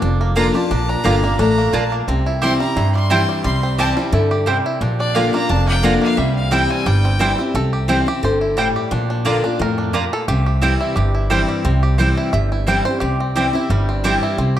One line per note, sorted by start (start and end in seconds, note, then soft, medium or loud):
0.00 0.48 F1 medium
0.00 0.67 F2 loud
0.00 0.20 A#3 medium
0.00 0.35 D4 medium
0.00 0.17 G4 medium
0.21 0.68 A#3 medium
0.35 0.54 D3 medium
0.35 0.46 A#3 medium
0.35 0.54 A#3 loud
0.35 0.70 D4 medium
0.35 0.54 D4 loud
0.35 0.46 F4 loud
0.35 0.53 F4 loud
0.35 0.46 D5 loud
0.35 0.54 A#5 loud
0.35 0.46 A#5 loud
0.54 0.70 D4 medium
0.54 0.70 F4 medium
0.54 1.02 G4 medium
0.54 0.91 A5 loud
0.71 0.94 A#1 loud
0.71 1.36 A#2 medium
0.71 0.88 D4 medium
0.89 1.36 D4 medium
0.89 1.39 A#5 loud
1.04 1.34 G1 medium
1.04 1.22 D3 medium
1.04 1.14 A#3 loud
1.04 1.22 A#3 medium
1.04 1.23 D4 medium
1.04 1.14 F4 medium
1.04 1.22 F4 medium
1.04 1.54 G4 medium
1.04 1.15 D5 loud
1.04 1.15 A#5 loud
1.23 1.57 A#3 medium
1.23 1.39 D4 medium
1.23 1.38 F4 medium
1.39 1.68 A1 medium
1.39 1.72 A3 loud
1.39 1.72 D4 medium
1.39 1.75 A#5 loud
1.58 1.91 A#3 medium
1.73 2.02 A#1 medium
1.73 2.06 A#2 medium
1.73 1.83 A#3 medium
1.73 2.08 D4 medium
1.73 1.83 F4 medium
1.73 1.83 D5 loud
1.73 1.92 A5 loud
1.73 1.83 A#5 loud
1.92 2.08 A#3 medium
2.08 2.54 C2 medium
2.08 2.73 C3 medium
2.08 3.48 C4 medium
2.26 2.76 E4 medium
2.42 2.59 E3 medium
2.42 2.60 G3 medium
2.42 2.51 C4 loud
2.42 2.60 C4 medium
2.42 2.51 E4 medium
2.42 2.59 E4 medium
2.42 2.91 G4 medium
2.42 2.52 C5 medium
2.42 2.52 G5 loud
2.42 2.59 C6 loud
2.60 2.94 G3 medium
2.60 2.77 C4 medium
2.60 2.76 E4 medium
2.60 2.92 A#5 loud
2.76 3.22 G2 medium
2.76 3.42 G2 medium
2.76 3.10 E4 medium
2.95 3.28 G3 medium
2.95 3.41 C6 loud
3.10 3.43 E3 medium
3.10 3.43 G3 loud
3.10 3.20 C4 loud
3.10 3.43 C4 medium
3.10 3.20 E4 loud
3.10 3.59 E4 medium
3.10 3.44 E4 medium
3.10 3.20 C5 loud
3.10 3.20 G5 loud
3.29 3.43 G3 medium
3.44 3.91 C2 loud
3.44 4.10 C3 loud
3.44 3.93 G3 medium
3.44 3.76 C6 loud
3.63 4.10 C4 medium
3.78 3.96 E3 medium
3.78 3.96 G3 medium
3.78 3.88 C4 loud
3.78 3.97 C4 medium
3.78 3.88 E4 medium
3.78 3.96 E4 medium
3.78 4.28 G4 medium
3.78 3.89 C5 loud
3.78 3.89 G5 loud
3.78 3.90 A5 loud
3.97 4.44 G3 medium
3.97 4.13 C4 medium
3.97 4.12 E4 medium
4.12 4.59 G2 medium
4.12 4.45 D3 medium
4.12 4.62 E4 medium
4.31 4.78 G4 medium
4.46 4.80 C3 medium
4.46 4.81 G3 medium
4.46 4.56 C4 medium
4.46 4.57 E4 loud
4.46 4.57 C5 loud
4.46 4.57 G5 loud
4.66 4.81 E4 medium
4.81 5.27 A#1 loud
4.81 5.46 A#2 loud
4.81 4.99 D4 medium
5.00 5.47 D4 medium
5.00 5.16 D5 loud
5.15 5.33 D3 medium
5.15 5.25 A#3 medium
5.15 5.33 A#3 medium
5.15 5.33 D4 medium
5.15 5.25 F4 medium
5.15 5.32 F4 medium
5.15 5.64 G4 medium
5.15 5.25 D5 loud
5.15 5.33 F5 loud
5.15 5.25 A#5 loud
5.33 5.66 A#3 medium
5.33 5.49 D4 medium
5.33 5.49 F4 medium
5.33 5.51 A#5 loud
5.49 5.96 F1 medium
5.49 6.15 F2 medium
5.49 5.82 D4 medium
5.49 5.67 A5 loud
5.68 6.00 A#3 medium
5.68 5.85 G5 loud
5.83 6.16 D3 loud
5.83 5.93 A#3 loud
5.83 6.16 A#3 medium
5.83 6.18 D4 medium
5.83 6.16 D4 loud
5.83 5.93 F4 loud
5.83 6.17 F4 loud
5.83 5.94 D5 loud
5.83 6.02 F#5 loud
5.83 5.94 A#5 loud
6.02 6.18 A#3 medium
6.02 6.19 F5 loud
6.17 6.64 C2 medium
6.17 6.83 C3 medium
6.17 6.51 G3 medium
6.17 6.35 E5 medium
6.36 6.54 F5 loud
6.51 6.84 E3 medium
6.51 6.85 G3 medium
6.51 6.61 C4 loud
6.51 6.85 C4 loud
6.51 6.62 E4 loud
6.51 6.85 E4 medium
6.51 6.62 C5 loud
6.51 6.72 G5 loud
6.51 6.62 G5 loud
6.70 7.04 C4 medium
6.70 6.88 G#5 loud
6.86 7.32 G1 loud
6.86 7.51 G2 medium
6.86 7.19 G3 medium
6.86 7.39 G5 loud
7.05 7.38 C4 medium
7.19 7.37 E3 medium
7.19 7.38 G3 loud
7.19 7.55 G3 medium
7.19 7.30 C4 loud
7.19 7.38 C4 loud
7.19 7.30 E4 loud
7.19 7.37 E4 loud
7.19 7.30 C5 loud
7.19 7.30 G5 loud
7.38 7.55 C4 medium
7.38 7.55 C4 soft
7.38 7.54 E4 medium
7.54 8.01 C2 medium
7.54 8.20 C3 loud
7.54 8.04 A4 medium
7.73 8.07 G4 medium
7.88 8.06 E3 medium
7.88 8.06 G3 medium
7.88 7.98 C4 medium
7.88 8.38 C4 medium
7.88 8.07 C4 loud
7.88 7.98 E4 loud
7.88 8.05 E4 medium
7.88 7.99 C5 loud
7.88 7.99 G5 loud
8.06 8.23 C4 medium
8.06 8.22 E4 medium
8.06 8.24 G4 medium
8.23 8.69 G1 medium
8.23 8.56 D3 medium
8.23 8.41 C5 loud
8.41 8.88 E4 medium
8.57 8.90 A2 medium
8.57 8.92 G3 medium
8.57 8.67 C4 medium
8.57 8.67 E4 loud
8.57 8.67 C5 loud
8.57 8.67 G5 loud
8.76 8.92 G4 medium
8.91 9.38 A#1 medium
8.91 9.57 A#2 loud
8.91 9.09 D4 medium
9.10 9.43 D4 medium
9.25 9.43 D3 medium
9.25 9.35 A#3 loud
9.25 9.43 A#3 loud
9.25 9.43 D4 medium
9.25 9.35 F4 loud
9.25 9.43 F4 loud
9.25 9.75 G4 medium
9.25 9.36 D5 loud
9.25 9.36 A#5 loud
9.44 9.61 D4 medium
9.44 9.60 D4 medium
9.44 9.59 F4 medium
9.59 10.06 F2 medium
9.59 9.92 A2 medium
9.59 10.10 A#4 loud
9.78 10.25 D4 medium
9.93 10.27 A#2 medium
9.93 10.03 A#3 medium
9.93 10.04 F4 loud
9.93 10.27 G4 medium
9.93 10.04 D5 loud
9.93 10.04 A#5 loud
10.13 10.28 A4 medium
10.28 10.74 C2 medium
10.28 10.94 C3 loud
10.28 10.45 G4 loud
10.46 10.95 G4 medium
10.61 10.95 E3 medium
10.61 10.95 G3 medium
10.61 10.72 C4 medium
10.61 11.64 C4 medium
10.61 10.95 C4 medium
10.61 10.72 E4 medium
10.61 10.95 E4 loud
10.61 10.72 C5 loud
10.61 10.72 G5 loud
10.81 11.14 E4 medium
10.96 11.43 G1 medium
10.96 11.62 G2 loud
10.96 11.48 G4 medium
11.15 12.17 E4 medium
11.30 11.63 E3 medium
11.30 12.68 G3 medium
11.30 11.64 G3 medium
11.30 11.40 C4 loud
11.30 11.64 C4 medium
11.30 11.40 E4 medium
11.30 11.64 E4 loud
11.30 11.40 C5 loud
11.30 11.41 G5 loud
11.49 11.82 G4 medium
11.65 12.11 C2 loud
11.65 12.30 C3 loud
11.65 11.98 C4 medium
11.83 13.00 G4 medium
11.98 12.32 E3 medium
11.98 12.32 G3 medium
11.98 12.08 C4 medium
11.98 13.20 C4 medium
11.98 12.32 C4 medium
11.98 12.09 E4 medium
11.98 12.32 E4 medium
11.98 12.09 C5 loud
11.98 12.09 G5 loud
12.17 12.32 E4 medium
12.33 12.80 G1 medium
12.33 12.99 G2 medium
12.33 12.51 E5 loud
12.52 12.85 E4 medium
12.67 12.85 E3 medium
12.67 12.85 G3 loud
12.67 13.70 G3 medium
12.67 12.77 C4 medium
12.67 12.86 C4 loud
12.67 12.77 E4 medium
12.67 12.84 E4 medium
12.67 12.77 C5 loud
12.67 12.77 G5 loud
12.85 13.02 C4 medium
12.85 13.01 E4 medium
12.85 13.00 C5 medium
13.00 13.48 C2 medium
13.00 13.67 C3 medium
13.00 13.35 G4 medium
13.20 13.88 C4 medium
13.35 13.53 E3 loud
13.35 13.53 G3 medium
13.35 13.45 C4 medium
13.35 13.54 C4 medium
13.35 13.46 E4 medium
13.35 13.52 E4 loud
13.35 13.85 G4 medium
13.35 13.46 C5 loud
13.35 13.46 G5 loud
13.53 13.70 C4 medium
13.53 13.69 E4 medium
13.53 14.01 E4 medium
13.70 14.16 G1 loud
13.70 14.35 G2 medium
13.70 14.19 G3 medium
13.89 14.35 C4 medium
14.04 14.37 E3 medium
14.04 14.37 G3 loud
14.04 14.14 C4 loud
14.04 14.37 C4 medium
14.04 14.14 E4 loud
14.04 14.38 E4 medium
14.04 14.53 G4 medium
14.04 14.14 C5 loud
14.04 14.14 G5 loud
14.23 14.60 E4 medium
14.38 14.60 C2 medium
14.38 14.60 C3 medium
14.38 14.60 C4 medium
14.57 14.60 G4 medium